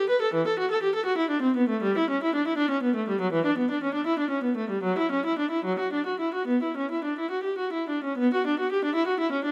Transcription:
0.09 0.22 B4 medium
0.22 0.34 A4 medium
0.34 0.46 E3 medium
0.47 0.59 A4 medium
0.59 0.70 F#4 medium
0.71 0.82 A4 medium
0.83 0.94 G4 medium
0.95 1.06 A4 medium
1.06 1.18 F#4 medium
1.18 1.30 E4 medium
1.30 1.43 D4 medium
1.42 1.56 C4 medium
1.56 1.70 B3 medium
1.69 1.82 A3 medium
1.83 1.96 G3 medium
1.98 2.10 E4 medium
2.10 2.22 C#4 medium
2.23 2.35 E4 medium
2.35 2.47 D4 medium
2.47 2.59 E4 medium
2.58 2.70 D4 medium
2.70 2.83 C#4 medium
2.83 2.95 B3 medium
2.96 3.08 A3 soft
3.09 3.20 G3 medium
3.21 3.33 F#3 medium
3.33 3.44 E3 medium
3.46 3.57 D4 medium
3.58 3.69 B3 medium
3.71 3.82 D4 medium
3.83 3.94 C#4 medium
3.94 4.06 D4 medium
4.06 4.18 E4 medium
4.19 4.31 D4 medium
4.30 4.43 C#4 medium
4.44 4.57 B3 medium
4.57 4.70 A3 medium
4.70 4.84 G3 soft
4.83 4.97 F#3 medium
4.98 5.11 E4 medium
5.12 5.25 C#4 medium
5.26 5.38 E4 medium
5.39 5.51 D4 medium
5.51 5.64 E4 medium
5.65 5.78 F#3 medium
5.79 5.92 F#4 soft
5.93 6.06 D4 medium
6.06 6.20 F#4 soft
6.20 6.33 E4 soft
6.34 6.48 F#4 soft
6.47 6.61 B3 medium
6.63 6.76 E4 soft
6.77 6.90 C#4 soft
6.91 7.04 E4 soft
7.05 7.17 D4 soft
7.19 7.32 E4 soft
7.31 7.44 F#4 medium
7.44 7.58 G4 soft
7.59 7.73 F#4 soft
7.73 7.89 E4 soft
7.90 8.05 D4 soft
8.04 8.19 C#4 soft
8.18 8.32 B3 medium
8.34 8.46 F#4 medium
8.47 8.59 D4 medium
8.59 8.71 F#4 medium
8.72 8.84 G4 medium
8.85 8.96 D4 medium
8.95 9.08 E4 medium
9.07 9.20 F#4 medium
9.20 9.33 E4 medium
9.32 9.45 C#4 medium
9.45 9.52 D4 medium

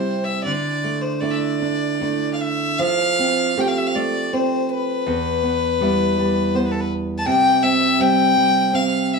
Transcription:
0.00 0.44 C3 medium
0.00 0.53 G3 medium
0.00 0.53 C4 medium
0.00 1.22 E4 medium
0.00 0.25 C5 medium
0.24 0.43 E5 medium
0.43 2.81 D3 medium
0.43 1.03 D5 medium
0.84 1.21 A3 soft
1.01 1.22 C5 medium
1.20 2.00 A3 soft
1.20 1.61 D4 soft
1.20 2.01 E4 soft
1.20 1.32 D5 medium
1.30 2.32 D5 medium
1.30 1.35 E5 medium
1.62 2.01 D4 soft
2.01 3.57 A3 soft
2.01 2.89 D4 soft
2.01 2.88 E4 soft
2.34 2.42 F5 soft
2.41 2.81 E5 medium
2.79 5.07 F3 medium
2.79 3.62 F5 medium
3.19 3.56 C4 soft
3.57 3.94 A3 soft
3.57 4.32 C4 soft
3.57 5.82 G4 medium
3.57 3.69 G5 medium
3.68 3.79 F5 medium
3.78 3.88 E5 medium
3.87 3.97 F5 medium
3.95 5.15 A3 medium
3.95 4.35 D5 medium
4.33 5.15 C4 medium
4.33 4.72 C5 medium
4.70 6.57 B4 medium
5.07 7.27 E2 medium
5.43 5.80 B3 soft
5.81 6.18 G3 medium
5.81 6.54 B3 medium
5.81 9.19 E4 medium
6.18 7.99 G3 medium
6.55 7.35 B3 medium
6.55 6.67 C5 medium
6.65 6.73 B4 medium
6.71 6.82 A4 medium
6.80 6.90 B4 medium
7.18 7.27 A5 medium
7.26 9.19 C3 medium
7.26 7.64 G5 loud
7.63 8.00 C4 medium
7.63 8.02 E5 medium
8.00 8.35 G3 medium
8.00 8.73 C4 medium
8.00 8.76 G5 loud
8.37 9.19 G3 medium
8.73 9.19 C4 medium
8.73 9.15 F5 medium
9.14 9.19 E5 medium

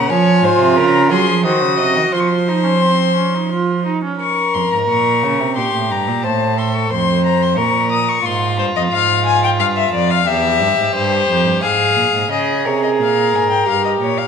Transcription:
0.00 0.11 C#3 medium
0.00 0.11 F#5 medium
0.09 0.42 F3 medium
0.09 1.41 F4 medium
0.09 0.45 C#5 medium
0.09 0.79 G#5 medium
0.43 0.49 G#2 medium
0.43 0.77 C5 medium
0.59 0.77 C3 medium
0.76 1.12 C#3 medium
0.76 1.12 A#4 medium
0.76 1.11 A#5 medium
1.10 1.29 F#3 medium
1.10 1.45 G#4 medium
1.10 1.45 C6 medium
1.27 1.46 F3 medium
1.44 1.63 D#3 medium
1.44 2.14 F#4 medium
1.44 1.78 C5 medium
1.44 2.12 D#6 medium
1.62 1.81 C#3 medium
1.79 1.97 C3 medium
1.79 2.14 D#5 medium
1.96 2.12 D#3 medium
2.12 3.83 F3 medium
2.12 2.49 F4 medium
2.12 3.86 C5 medium
2.12 2.22 C6 medium
2.20 2.29 C#6 soft
2.28 3.87 C6 medium
2.48 2.65 D#4 medium
2.63 2.83 C#4 medium
2.82 3.15 C4 medium
3.15 3.36 C#4 medium
3.34 3.51 D#4 medium
3.51 3.85 F4 medium
3.85 4.03 D#4 medium
4.04 4.21 C#4 medium
4.20 5.52 A#4 medium
4.20 4.56 C#6 medium
4.54 4.62 F2 medium
4.54 4.72 C6 medium
4.72 4.88 G#2 medium
4.72 4.79 A#5 medium
4.89 5.25 A#2 medium
4.89 5.56 C#6 medium
5.23 5.42 C#3 medium
5.40 5.58 C3 medium
5.57 5.73 A#2 medium
5.57 6.26 G4 medium
5.57 5.93 C6 medium
5.73 5.92 A2 medium
5.90 6.09 G2 medium
5.90 6.26 A#5 medium
6.07 6.26 A#2 medium
6.24 6.91 A2 medium
6.24 6.58 C5 medium
6.24 6.60 A5 medium
6.58 6.92 A4 medium
6.58 6.76 C6 medium
6.75 6.91 C#6 medium
6.91 7.59 F2 medium
6.91 7.59 C5 medium
6.91 7.24 C6 medium
7.26 7.44 A#5 medium
7.42 7.58 C6 medium
7.57 8.25 A#2 medium
7.57 8.25 A#4 medium
7.57 7.91 C#6 medium
7.92 8.10 D#6 medium
8.09 8.27 C#6 medium
8.25 8.60 G#2 medium
8.25 10.23 F4 medium
8.25 8.58 C6 medium
8.58 8.75 G2 medium
8.58 8.65 C5 medium
8.75 8.91 F2 medium
8.75 8.83 D#5 medium
8.91 9.60 G#2 medium
8.91 9.25 F5 medium
9.26 9.42 G#5 medium
9.44 9.50 G5 medium
9.58 9.91 G2 medium
9.58 9.66 F5 medium
9.77 9.93 E5 medium
9.91 10.25 F2 medium
9.91 10.12 D5 medium
10.11 10.29 F5 medium
10.26 10.62 E2 medium
10.26 11.64 G4 medium
10.26 10.95 E5 medium
10.60 10.77 G2 medium
10.77 10.94 G#2 medium
10.95 11.28 G2 medium
10.95 11.62 C5 medium
11.28 11.47 F2 medium
11.45 11.64 G2 medium
11.62 11.97 G#2 medium
11.62 12.30 G#4 medium
11.62 12.30 F5 medium
11.96 12.12 A#2 medium
12.13 12.29 G#2 medium
12.30 12.66 C#3 medium
12.30 13.67 G#4 medium
12.30 12.67 G#4 medium
12.30 12.68 D#5 medium
12.65 13.01 C3 medium
12.65 14.28 A#4 medium
12.65 12.83 C#5 medium
12.83 12.90 D#5 medium
12.99 13.35 A#2 medium
12.99 13.37 F5 medium
13.33 13.66 G#2 medium
13.33 13.50 G#5 medium
13.50 13.67 G5 medium
13.66 14.00 G2 medium
13.66 14.28 G4 medium
13.66 13.84 F5 medium
13.85 13.92 D#5 medium
14.01 14.28 A#2 medium
14.01 14.20 C#5 medium
14.18 14.28 F5 medium

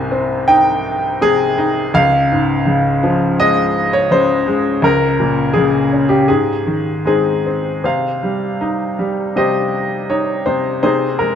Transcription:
0.00 1.91 C2 medium
0.00 0.82 G#2 soft
0.00 1.18 C3 soft
0.00 0.54 G#5 medium
0.12 1.54 C4 soft
0.48 1.56 D#4 medium
0.48 1.24 G5 medium
1.22 1.92 C3 soft
1.22 1.97 G#4 medium
1.58 1.93 D#4 medium
1.94 4.78 C#2 medium
1.94 3.43 F5 loud
2.32 3.71 G#2 soft
2.66 4.06 C#3 soft
3.03 4.43 F3 soft
3.40 4.46 G#3 soft
3.40 3.95 D#5 medium
3.93 4.11 C#5 medium
4.11 4.81 C#3 soft
4.11 4.86 C5 medium
4.48 4.82 G#3 soft
4.82 6.24 C#2 medium
4.82 5.58 A#4 medium
5.20 6.25 A#2 soft
5.54 6.27 C#3 soft
5.54 6.11 G#4 medium
5.93 6.28 C#4 soft
6.09 6.29 G4 medium
6.28 7.81 G#2 soft
6.28 7.06 G#4 medium
6.67 7.81 D#3 soft
7.05 7.82 G#3 soft
7.05 7.45 C4 soft
7.05 7.81 D#4 soft
7.05 7.87 G#4 medium
7.46 7.84 C4 soft
7.84 9.34 C3 soft
7.84 9.32 C5 soft
7.84 9.41 F5 medium
8.23 8.97 G3 soft
8.61 10.06 D#4 soft
8.99 10.43 G3 soft
9.36 10.45 C3 soft
9.36 10.80 G4 soft
9.36 10.44 C5 soft
9.36 10.07 D#5 medium
10.10 10.81 D#4 soft
10.10 10.44 C#5 medium
10.46 10.82 C3 soft
10.46 10.81 C5 medium
10.83 11.35 C3 soft
10.83 11.35 D#4 soft
10.83 11.35 G#4 soft
10.83 11.20 C5 medium
11.19 11.35 G#3 soft
11.19 11.35 A#4 medium

